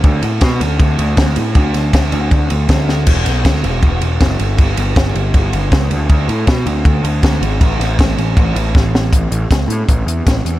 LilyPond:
<<
  \new Staff \with { instrumentName = "Picked electric bass" } { \clef bass \time 4/4 \key a \major \tempo 4 = 159 d,8 a,8 b,8 d,8 d,8 d,8 d,8 a,8 | d,8 d,8 d,8 d,8 d,8 d,8 d,4 | e,,8 b,,8 d,8 e,,8 e,,8 e,,8 fis,,8 g,,8 | g,,8 g,,8 g,,8 g,,8 g,,8 g,,8 cis,8 d,8 |
d,8 a,8 b,8 d,8 d,8 d,8 d,8 gis,,8 | a,,8 a,,8 a,,8 a,,8 a,,8 a,,8 a,,4 | a,,8 a,,8 cis,8 a,8 a,,8 e,8 a,,8 e,8 | }
  \new DrumStaff \with { instrumentName = "Drums" } \drummode { \time 4/4 <bd cymr>8 cymr8 <bd cymr sn>8 cymr8 <bd cymr>8 cymr8 <bd cymr sn>8 cymr8 | <bd cymr>8 <cymr sn>8 <bd cymr sn>8 cymr8 <bd cymr>8 cymr8 <bd cymr sn>8 sn8 | <cymc bd cymr>8 <cymr sn>8 <bd cymr sn>8 cymr8 <bd cymr>8 cymr8 <bd cymr sn>8 cymr8 | <bd cymr>8 cymr8 <bd cymr sn>8 cymr8 <bd cymr>8 cymr8 <bd cymr sn>8 cymr8 |
<bd cymr>8 cymr8 <bd cymr sn>8 cymr8 <bd cymr>8 cymr8 <bd cymr sn>8 cymr8 | <bd cymr>8 <cymr sn>8 <bd cymr sn>8 cymr8 <bd cymr>8 cymr8 <bd sn>8 sn8 | <hh bd>8 hh8 <hh bd sn>8 hh8 <hh bd>8 hh8 <hh bd sn>8 hh8 | }
>>